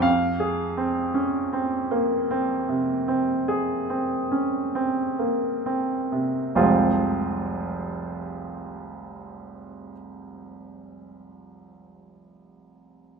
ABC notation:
X:1
M:4/4
L:1/16
Q:1/4=36
K:Fm
V:1 name="Grand piano"
F,, A C D C B, C C, C A C D C B, C C, | z16 |]
V:2 name="Grand piano" clef=bass
f12- f2 z2 | [F,,,C,,F,A,CF]16 |]